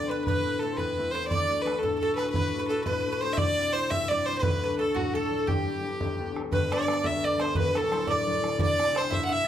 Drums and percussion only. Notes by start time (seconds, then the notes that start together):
0.27 bodhran
0.78 bodhran
0.89 bodhran
0.99 bodhran
1.31 bodhran
1.67 bodhran
1.84 bodhran
1.93 bodhran
2.02 bodhran
2.18 bodhran
2.34 bodhran
2.86 bodhran
2.95 bodhran
3.06 bodhran
3.38 bodhran
3.91 bodhran
4.01 bodhran
4.11 bodhran
4.43 bodhran
4.97 bodhran
5.07 bodhran
5.17 bodhran
5.48 bodhran
6.01 bodhran
6.11 bodhran
6.21 bodhran
6.36 bodhran
6.52 bodhran
6.72 bodhran
6.88 bodhran
7.04 bodhran
7.24 bodhran
7.39 bodhran
7.55 bodhran
7.75 bodhran
7.92 bodhran
8.07 bodhran
8.27 bodhran
8.44 bodhran
8.59 bodhran
8.80 bodhran
8.96 bodhran
9.12 bodhran
9.32 bodhran